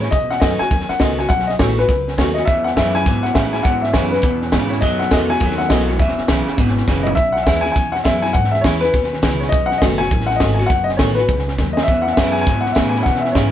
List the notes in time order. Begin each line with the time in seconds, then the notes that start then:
Already playing: A2 B2
0.01 B3 E4 C#5, snare
0.11 B2 D#5, kick, snare
0.31 F#5, snare
0.40 F#2 D#3 A3 B3 F#4 D#5, kick, snare, hi-hat pedal
0.59 B3 F#4 G#5, muted upright bass stroke, snare
0.71 D#2 F#2, kick, snare
0.80 snare
0.89 F#5, muted upright bass stroke, snare
0.99 C#2 D#3 A3 B3 F#4 D#5, kick, snare, hi-hat pedal
1.19 B3 F#4 G#5, snare
1.29 B1 B2 F#5, kick, snare
1.40 snare
1.47 D#5, snare
1.59 A1 D#3 A3 B3 F#4 C#5, kick, snare, hi-hat pedal
1.79 B3 F#4 B4, snare
1.89 C#2 F#2, kick, snare
2.08 snare
2.18 D#2 D#3 A3 B3 F#4 C#5, kick, snare, hi-hat pedal
2.34 F#4 D#5, snare
2.39 B3
2.45 E2 B2 E5, kick, snare
2.64 F#5, snare
2.76 E2 F#2 C#3 E3 G#3 B3 E4 E5, kick, snare, hi-hat pedal
2.95 B3 E4 G#5, snare
3.06 E2 G#2 B2, kick, snare
3.23 F#5, snare
3.34 E2 A2 C#3 E3 G#3 B3 E4 E5, kick, snare, hi-hat pedal
3.53 B3 E4 G#5, snare
3.63 E2 G#2 B2 F#5, kick, snare
3.81 E5, snare
3.93 E2 F#2 C#3 E3 G#3 B3 E4 C#5, kick, snare, hi-hat pedal
4.11 B3 E4 B4, snare
4.22 E2 B2, kick, snare
4.42 snare
4.52 E2 G#2 C#3 E3 G#3 B3 E4, kick, snare, hi-hat pedal
4.69 B3 E4 C#5, snare
4.81 F#2 B2 F#3 D#5, kick, snare
4.99 F#5, snare
5.11 E2 B2 D#3 G#3 A3 B3 F#4 D#5, kick, snare, hi-hat pedal
5.29 B3 F#4 G#5, snare
5.40 D#2 F#2 B2 F#3, kick, snare
5.51 snare
5.58 F#5, snare
5.69 B1 B2 D#3 G#3 A3 B3 F#4 D#5, kick, snare, hi-hat pedal
5.88 B3 F#4, snare
5.99 E1 E2 B2 E5, kick, snare
6.08 snare
6.18 muted upright bass stroke, snare
6.28 B1 E2 C#3 E3 G#3 B3 E4, kick, snare, hi-hat pedal
6.47 B3 E4, muted upright bass stroke, snare
6.58 G#1 E2 B2, kick, snare
6.68 snare
6.77 snare
6.88 F#1 E2 C#3 E3 G#3 B3 E4, kick, snare, hi-hat pedal
7.03 E4 D#5, floor tom
7.08 B3
7.15 B1 E2 E5, kick, snare
7.32 F#5, snare
7.43 D#2 E3 E5, kick, snare, hi-hat pedal
7.47 G#3 B3 E4
7.61 G#5
7.66 B3 E4, snare
7.72 G#5, snare
7.76 E2 B2, kick
7.92 F#5, snare
8.04 F#2 E3 G#3 B3 E4 E5, kick, snare, hi-hat pedal
8.22 B3 E4 G#5, snare
8.33 E2 G#2 F#5, kick, snare
8.44 snare
8.51 E5, snare
8.61 E2 E3 C#5, kick, snare, hi-hat pedal
8.65 G#3 B3 E4
8.81 E4 B4, snare
8.85 B3
8.94 D#2 B2, kick, snare
9.04 snare
9.13 snare
9.22 C#2 E3 G#3 B3 E4, kick, snare, hi-hat pedal
9.40 B3 E4 C#5, snare
9.49 B1 D#5, kick, snare
9.54 B2
9.66 F#5
9.71 snare
9.78 F#1 D#3 D#5, kick, snare, hi-hat pedal
9.83 A3 B3 F#4
9.98 B3 F#4 G#5, snare
10.11 A1 F#2, kick, snare
10.21 snare
10.26 F#5, snare
10.36 D#5
10.40 G#1 D#3 A3 B3 F#4, kick, snare, hi-hat pedal
10.54 G#5
10.59 B3 F#4, snare
10.66 F#1 F#5, kick, snare
10.70 B2
10.84 D#5
10.89 snare
10.97 A1 D#3 A3 C#5, kick, snare, hi-hat pedal
11.01 B3 F#4
11.15 F#4 B4, snare
11.20 B3
11.28 C#2 G#2, kick, snare
11.38 snare
11.48 snare
11.58 D#2 F#2, kick, snare, hi-hat pedal
11.73 D#5
11.77 snare
11.83 E5
11.88 E2 B2, kick, snare
12.02 F#5
12.07 snare
12.13 E5
12.17 E2 F#2 C#3 E3 G#3 B3 E4, kick, snare, hi-hat pedal
12.32 G#5
12.36 snare
12.41 G#5
12.47 E2 G#2 B2, kick, snare
12.61 F#5
12.65 snare
12.72 E3 G#3 B3 E5, snare, hi-hat pedal
12.76 E2 A2 C#3 E4, kick
12.89 G#5
12.96 B3 E4, snare
13.03 B2 F#5, kick, snare
13.07 E2 B2
13.15 snare
13.20 E5
13.25 snare
13.32 G#2 C#5, kick, snare, hi-hat pedal
13.36 E2 C#3 E3 G#3 B3 E4